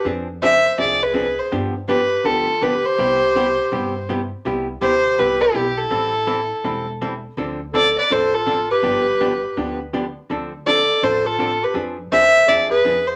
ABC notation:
X:1
M:4/4
L:1/16
Q:"Swing" 1/4=164
K:C
V:1 name="Fiddle"
z4 e4 d2 B4 c2 | z4 B4 A4 B2 c2- | c12 z4 | z4 c4 B2 G4 A2- |
A8- A2 z6 | z4 d2 d2 c2 A4 B2- | B8- B2 z6 | z4 d4 c2 A4 B2 |
z4 e4 d2 B4 c2 |]
V:2 name="Clarinet"
z4 c4 _A2 A4 A2 | z4 G4 F4 G2 G2- | G12 z4 | z4 G4 G2 E4 E2- |
E8- E2 z6 | z4 A2 B2 A2 F4 G2- | G8- G2 z6 | z4 A4 A2 F4 G2 |
z4 c4 _A2 A4 A2 |]
V:3 name="Hollow-body jazz guitar"
[F,CD_A]2 z2 [F,CDA] z3 [F,CDA]2 z2 [F,CDA] z3 | [D,F,B,DG]2 z2 [D,F,B,DG] z3 [D,F,B,DG]2 z2 [D,F,B,DG] z3 | [C,G,B,EG]2 z2 [C,G,B,EG] z3 [C,G,B,EG]2 z2 [C,G,B,EG] z3 | [C,G,B,EG]2 z2 [C,G,B,EG] z3 [C,G,B,EG]2 z2 [C,G,B,EG] z3 |
[E,G,CEA]2 z2 [E,G,CEA] z3 [E,G,CEA]2 z2 [E,G,CEA] z3 | [D,F,CDA]2 z2 [D,F,CDA] z3 [D,F,CDA]2 z2 [D,F,CDA] z3 | [D,F,B,DG]2 z2 [D,F,B,DG] z3 [D,F,B,DG]2 z2 [D,F,B,DG] z3 | [D,F,CDA]2 z2 [D,F,CDA] z3 [D,F,CDA]2 z2 [D,F,CDA] z3 |
[F,CD_A]2 z2 [F,CDA] z3 [F,CDA]2 z2 [F,CDA] z3 |]
V:4 name="Upright bass" clef=bass
F,,8 C,,8 | G,,8 D,,8 | C,,8 G,,8 | C,,4 D,,4 C,,4 B,,,4 |
A,,,8 E,,,8 | D,,8 A,,,8 | G,,,8 D,,8 | D,,8 A,,,8 |
F,,4 D,,4 E,,4 F,,4 |]